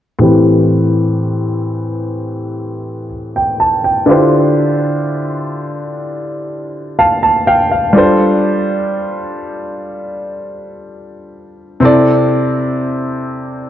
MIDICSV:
0, 0, Header, 1, 2, 480
1, 0, Start_track
1, 0, Tempo, 967742
1, 100, Time_signature, 4, 2, 24, 8
1, 6793, End_track
2, 0, Start_track
2, 0, Title_t, "Grand piano"
2, 0, Program_c, 0, 0
2, 92, Note_on_c, 0, 45, 72
2, 99, Note_on_c, 0, 52, 68
2, 105, Note_on_c, 0, 60, 64
2, 111, Note_on_c, 0, 67, 65
2, 117, Note_on_c, 0, 71, 76
2, 192, Control_c, 0, 64, 127
2, 1517, Note_off_c, 0, 45, 0
2, 1520, Note_off_c, 0, 52, 0
2, 1523, Note_off_c, 0, 60, 0
2, 1526, Note_off_c, 0, 67, 0
2, 1529, Note_off_c, 0, 71, 0
2, 1667, Note_on_c, 0, 79, 61
2, 1778, Note_off_c, 0, 79, 0
2, 1785, Note_on_c, 0, 81, 66
2, 1897, Note_off_c, 0, 81, 0
2, 1906, Note_on_c, 0, 79, 61
2, 2013, Note_on_c, 0, 50, 71
2, 2018, Note_on_c, 0, 62, 68
2, 2024, Note_on_c, 0, 64, 65
2, 2027, Control_c, 0, 64, 0
2, 2028, Note_on_c, 0, 65, 67
2, 2033, Note_on_c, 0, 67, 66
2, 2038, Note_on_c, 0, 72, 81
2, 2118, Control_c, 0, 64, 127
2, 2131, Note_off_c, 0, 79, 0
2, 3466, Note_on_c, 0, 77, 61
2, 3466, Note_on_c, 0, 81, 66
2, 3577, Note_off_c, 0, 77, 0
2, 3578, Note_off_c, 0, 81, 0
2, 3585, Note_on_c, 0, 81, 65
2, 3677, Note_off_c, 0, 50, 0
2, 3680, Note_off_c, 0, 62, 0
2, 3682, Note_off_c, 0, 64, 0
2, 3684, Note_off_c, 0, 65, 0
2, 3687, Note_off_c, 0, 67, 0
2, 3689, Note_off_c, 0, 72, 0
2, 3697, Note_off_c, 0, 81, 0
2, 3706, Note_on_c, 0, 77, 67
2, 3706, Note_on_c, 0, 79, 66
2, 3818, Note_off_c, 0, 79, 0
2, 3819, Note_off_c, 0, 77, 0
2, 3827, Note_on_c, 0, 77, 57
2, 3932, Note_on_c, 0, 55, 71
2, 3939, Note_on_c, 0, 62, 68
2, 3944, Note_on_c, 0, 65, 66
2, 3947, Control_c, 0, 64, 0
2, 3951, Note_on_c, 0, 69, 70
2, 3957, Note_on_c, 0, 72, 81
2, 4034, Control_c, 0, 64, 127
2, 4052, Note_off_c, 0, 77, 0
2, 5837, Note_off_c, 0, 55, 0
2, 5840, Note_off_c, 0, 62, 0
2, 5843, Note_off_c, 0, 65, 0
2, 5846, Note_off_c, 0, 69, 0
2, 5849, Note_off_c, 0, 72, 0
2, 5853, Note_on_c, 0, 48, 73
2, 5859, Note_on_c, 0, 60, 65
2, 5866, Note_on_c, 0, 64, 65
2, 5867, Control_c, 0, 64, 0
2, 5872, Note_on_c, 0, 69, 63
2, 5878, Note_on_c, 0, 74, 77
2, 5966, Control_c, 0, 64, 127
2, 6793, Note_off_c, 0, 48, 0
2, 6793, Note_off_c, 0, 60, 0
2, 6793, Note_off_c, 0, 64, 0
2, 6793, Note_off_c, 0, 69, 0
2, 6793, Note_off_c, 0, 74, 0
2, 6793, End_track
0, 0, End_of_file